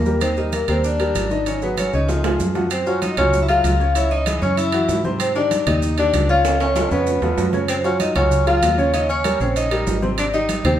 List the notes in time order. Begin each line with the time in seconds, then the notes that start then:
Already playing: D#2 A#3 A#4
0.06 G3 G4 A#4, high conga, maracas
0.21 D#3 C4 D#4 C5 D#5, high conga, high timbale, maracas
0.37 G3 D#4 G4 A#4 D#5, maracas
0.52 A#3 A#4, high conga, high timbale, low timbale, maracas
0.68 D#2 G3 C4 G4 A#4 C5, high conga, high timbale, maracas
0.84 D4 D5, high conga, maracas
0.99 G3 G4 A#4, high conga, high timbale, maracas
1.15 G#1, high conga, high timbale, low timbale, maracas
1.31 D#3 D#4 D#5, high conga, maracas
1.46 D#3 C#4 D#4 C#5 D#5, high conga, high timbale, maracas
1.61 F#3 B3 F#4 G#4 B4, high conga, maracas
1.77 C#4 C#5, high conga, high timbale, low timbale, maracas
1.93 C#2 C#3 C#4 D#4 C#5 D#5, high conga, maracas
2.08 F3 F4 G#4, high conga, high timbale, maracas
2.24 F3 F4 G#4, high conga, low timbale, maracas
2.40 F#2, high conga, low timbale, maracas
2.55 F3 F4 F#4, high conga, low timbale, maracas
2.71 C4 C5, high conga, high timbale, maracas
2.86 F#3 C#4 F4 F#4 C#5, high conga, maracas
3.02 D#4 D#5, high conga, high timbale, low timbale, maracas
3.17 C#2 F#3 C#4 F4 F#4 C#5, high conga, low conga, high timbale, maracas
3.33 high conga, low conga, maracas
3.42 E4 E5
3.48 F#3 F4 G#4 F5, high conga, high timbale, maracas
3.64 C#2, high conga, high timbale, low timbale, maracas
3.80 C#3 C#4 C#5, high conga, maracas
3.95 C#3 C#4 E4 C#5 E5, high conga, high timbale, maracas
4.11 D#4 D#5, high conga, maracas
4.26 E3 E4 G#4, high conga, high timbale, low timbale, maracas
4.42 F#2 C#3 C#4 C#5, high conga, maracas
4.57 E4 E5, high conga, high timbale, maracas
4.72 E3 E4 F#4, high conga, high timbale, maracas
4.88 G#2, high conga, low timbale, maracas
5.04 C3 C4 C5, high conga, maracas
5.20 C4 C5, high conga, high timbale, maracas
5.35 D#3 D4 D#4 G4 D5, high conga, maracas
5.51 high conga, high timbale, low timbale, maracas
5.60 D4 D5
5.67 D#2 D#3 D#4 G4 D#5, high conga, low conga, high timbale, maracas
5.82 high conga, low conga, maracas
5.98 D#3 D4 G4 D5, high conga, high timbale, maracas
6.13 C#2, high conga, high timbale, low timbale, maracas
6.29 C#3 C#4 F4 C#5 F5, high conga, maracas
6.44 C#3 C#4 C#5, high conga, high timbale, maracas
6.60 C#4 C#5, high conga, high timbale, maracas
6.76 F3 F4 A4, high conga, high timbale, maracas
6.91 F2 C#3 B3 C#4 B4 C#5, high conga, maracas
7.07 high conga, low timbale, maracas
7.22 E2 F3 F4 A4, high conga, low timbale, maracas
7.38 F#2, high conga, low timbale, maracas
7.53 C#3 C#4 C#5, high conga, low timbale, maracas
7.68 C4 C5, high conga, high timbale, maracas
7.84 F#3 C#4 F4 F#4 C#5, high conga, maracas
8.00 D#4 D#5, high conga, high timbale, low timbale, maracas
8.15 C#2 F#3 C#4 F4 F#4 C#5, high conga, low conga, high timbale, maracas
8.31 high conga, low conga, maracas
8.47 F#3 F4 G#4 F5, high conga, high timbale, maracas
8.62 D#2, high conga, high timbale, low timbale, maracas
8.77 C#3 C#4 C#5, high conga, maracas
8.93 C#3 C#4 D#4 C#5 D#5, high conga, high timbale, maracas
9.09 C#4 C#5, high conga, maracas
9.24 G3 G4 A#4, high conga, high timbale, low timbale, maracas
9.40 A#1 C#3 C4 C#4 C5 C#5, maracas
9.56 D#4 D#5, high conga, high timbale, maracas
9.71 G3 G4 A#4, high conga, high timbale, maracas
9.87 G#1, high conga, low timbale, maracas
10.02 C3 C4 C5, high conga, maracas
10.18 D4 D5, high conga, high timbale, maracas
10.33 D#3 D#4 G4 D#5, high conga, maracas
10.49 high conga, high timbale, low timbale, maracas
10.64 D#2 D#3 C4 D#4 G4 C5, high conga, low conga, high timbale, maracas